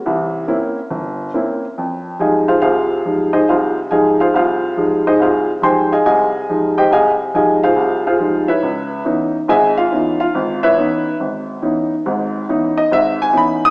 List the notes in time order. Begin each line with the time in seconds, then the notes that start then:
0.06 C2 E3
0.48 A#3 C4 C#4 E4
0.90 G1
1.34 A#3 C4 C#4 E4
1.78 F2
2.19 F3 G3 G#3 D#4 G#4 D#5 F5 G#5
2.48 F4 G#4 C5 F5
2.62 C2 C3 F4 G#4 C5 F5
3.05 F3 G3 G#3 D#4
3.33 D#4 G#4 C5 D#5
3.49 C2 F4 G#4 C5 F5
3.91 F3 G3 G#3 D#4 G#4 D#5 F5 G#5
4.20 F4 G#4 C5 F5
4.34 C2 F4 G#4 C5 F5
4.77 F3 G3 G#3 D#4
5.07 D#4 G#4 C5 D#5
5.19 C2 F4 G#4 C5 F5
5.62 F3 G3 G#3 D#4 C5 G5 G#5 C6
5.92 G#4 D#5 F5 G#5
6.06 C2 G#4 D#5 F5 G#5
6.49 F3 G3 G#3 D#4
6.78 G4 C5 D#5 G5
6.91 C2 G#4 D#5 F5 G#5
7.34 F3 G3 G#3 D#4 G#4 D#5 F5 G#5
7.63 F4 G#4 C5 F5
7.76 C2
8.07 F4 G#4 C5 F5
8.19 F3 G3 G#3 D#4
8.48 E4 B4 C#5 E5
8.63 C#2
9.05 E3 B3 C#4 D#4
9.48 G#1 G#2 G#4 D#5 E5 G#5
9.78 F4 F5
9.92 E3 B3 C#4 D#4
10.20 F4 F5
10.35 G#1
10.63 E4 B4 C#5 E5
10.77 E3 B3 C#4 D#4
11.20 G#1
11.62 E3 B3 C#4 D#4
12.06 G#1 G#2
12.49 E3 B3 C#4 D#4
12.77 D#5
12.91 G#1 G#2 E5
13.22 G#5
13.33 E3 B3 C#4 D#4
13.37 B5
13.65 D#6